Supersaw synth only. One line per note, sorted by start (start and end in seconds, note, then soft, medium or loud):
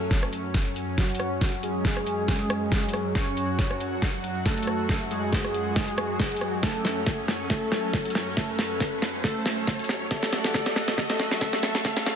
0.00 0.25 A3 medium
0.00 0.25 A4 loud
0.98 1.55 F#3 medium
0.98 1.55 F#4 medium
1.63 3.07 G#3 medium
1.63 3.07 G#4 loud
3.15 3.73 C#4 medium
3.15 3.73 C#5 loud
4.46 5.03 A3 medium
4.46 5.03 A4 loud
5.11 6.55 G#3 medium
5.11 6.55 G#4 loud
6.63 7.20 A3 medium
6.63 7.20 A4 medium
7.50 8.07 A3 medium
7.50 8.07 A4 medium
8.37 8.94 A3 medium
8.37 8.94 A4 loud
9.24 9.81 A3 medium
9.24 9.81 A4 loud
10.11 10.53 A3 medium
10.11 10.53 A4 loud
10.54 10.96 A3 medium
10.54 10.96 A4 loud
10.98 11.40 A3 medium
10.98 11.40 A4 loud
11.41 11.83 A3 medium
11.41 11.83 A4 loud
11.85 12.05 A3 medium
11.85 12.05 A4 loud
12.07 12.16 A3 medium
12.07 12.16 A4 loud